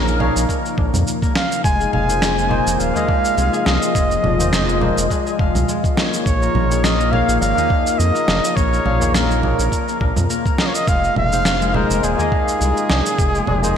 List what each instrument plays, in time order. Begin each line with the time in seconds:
Already playing: analog synth bass A#1, ambient pad C#3 F3 A#3 D#4, tine electric piano A#3 D#4 G#4 C#5, harp A#3 F5, muted trumpet A#4
0.07 harp A#4, shaker
0.19 tine electric piano A#3 D#4 G#4 C#5, harp F5, tabla na, low conga
0.36 analog synth bass A#1, shaker
0.48 harp A#3, kick, tabla na, shaker
0.65 shaker
0.78 analog synth bass A#1, kick, tabla na
0.94 analog synth bass F2, tabla ge, low conga, shaker
1.07 shaker
1.22 harp A#3, kick, tabla na, shaker
1.35 harp A#3, muted trumpet F5, snare, tabla tin
1.52 tabla tin, shaker
1.64 analog synth bass F1, ambient pad C3 F3 G#3 F4, harp G#3, muted trumpet G#5, kick, shaker
1.80 harp G#4, shaker
1.93 analog synth bass F1, harp F5, muted trumpet G#5, tabla tin, low conga
2.08 tine electric piano A#3 D#4 G#4 C5, shaker
2.22 harp G#3, snare, shaker
2.38 shaker
2.49 tine electric piano A#3 D#4 G#4 C5, low conga
2.66 analog synth bass F1, shaker
2.74 muted trumpet G#5
2.80 analog synth bass D#1, muted trumpet F5, tabla tin, shaker
2.93 harp G#3, tine electric piano A#3 D#4 G#4, tabla ge, shaker
2.97 tine electric piano D#5
3.08 harp G#3, kick, tabla na, tabla tin
3.24 tabla tin, shaker
3.37 analog synth bass C2, harp G#3, shaker
3.53 harp G#4, shaker
3.66 analog synth bass C2, muted trumpet D#5, harp F5, snare, tabla na
3.82 shaker
3.95 analog synth bass F1, harp G#3, kick, shaker
4.11 shaker
4.23 analog synth bass F1, tabla na, tabla tin, low conga
4.39 tine electric piano A#3 D#4 G#4 C5, tabla ge, shaker
4.53 snare, shaker
4.68 harp G#3, shaker
4.80 harp G#3, tine electric piano A#3 D#4 G#4 C5, tabla na, low conga
4.98 analog synth bass F1, shaker
5.10 harp G#3, kick, tabla na, shaker
5.26 harp G#4, tabla tin, shaker
5.39 analog synth bass F1, harp F5, kick, tabla na
5.54 analog synth bass C2, tabla ge, low conga, shaker
5.68 harp G#3, shaker
5.84 kick, tabla na, shaker
5.95 tine electric piano A#3 D#4 G#4, snare
5.99 tine electric piano C#5
6.12 tabla tin, shaker
6.25 analog synth bass A#1, ambient pad C#3 A#3, muted trumpet C#5, kick, shaker
6.42 harp A#3, shaker
6.55 analog synth bass A#1, harp A#3, tabla tin, low conga
6.70 tine electric piano A#3 D#4 G#4 C#5, shaker
6.83 harp A#3, muted trumpet D#5, snare, shaker
7.00 harp A#4, shaker
7.11 tine electric piano A#3 D#4 G#4 C#5, muted trumpet F5, harp F5, low conga
7.28 analog synth bass A#1, shaker
7.41 analog synth bass G#1, harp A#3, muted trumpet F5, tabla tin, shaker
7.55 tine electric piano A#3 D#4 G#4, tabla ge, shaker
7.59 tine electric piano D#5
7.69 kick, tabla na, tabla tin
7.86 tabla tin, shaker
7.98 analog synth bass F2, muted trumpet D#5, shaker
8.15 harp A#3, shaker
8.28 analog synth bass F1, harp A#3, snare, tabla na
8.44 shaker
8.56 analog synth bass A#1, harp A#3, muted trumpet C#5, kick, shaker
8.72 harp A#4, shaker
8.85 analog synth bass A#1, harp F5, tabla na, tabla tin, low conga
9.00 tine electric piano A#3 D#4 G#4 C#5, tabla ge, shaker
9.14 harp A#3, muted trumpet A#4, snare, shaker
9.31 shaker
9.42 tine electric piano A#3 D#4 G#4 C#5, tabla na, low conga
9.59 analog synth bass A#1, shaker
9.72 kick, tabla na, shaker
9.88 harp A#3, tabla tin, shaker
10.00 analog synth bass A#1, harp A#3, kick, tabla na
10.16 analog synth bass F2, low conga, tabla ge, shaker
10.30 harp A#3, shaker
10.45 harp A#4, kick, tabla na, shaker
10.58 muted trumpet D#5, harp F5, snare, tabla tin
10.67 muted trumpet C#5
10.75 muted trumpet D#5, tabla tin, shaker
10.87 analog synth bass F1, ambient pad C3 G#3, harp G#3, muted trumpet F5, kick, shaker
11.04 shaker
11.16 analog synth bass F1, muted trumpet F5, tabla tin, low conga
11.31 tine electric piano A#3 D#4 G#4 C5, shaker
11.45 snare, shaker
11.61 harp G#3, shaker
11.73 harp G#3, tine electric piano A#3 D#4 G#4 C5, muted trumpet A#4, low conga
11.90 analog synth bass F1, shaker
12.03 analog synth bass D#1, harp G#3, muted trumpet G#4, tabla tin, shaker
12.17 tine electric piano A#3 D#4 G#4 D#5, harp G#4, tabla ge, shaker
12.32 harp F5, kick, tabla na, tabla tin
12.48 tabla tin, shaker
12.61 analog synth bass C2, harp G#3, shaker
12.77 shaker
12.90 analog synth bass C2, snare, tabla na
13.06 shaker
13.19 analog synth bass F1, kick, shaker
13.34 harp G#3, shaker
13.47 analog synth bass F1, harp G#3, tabla na, tabla tin, low conga
13.62 tine electric piano A#3 D#4 G#4 C5, tabla ge, shaker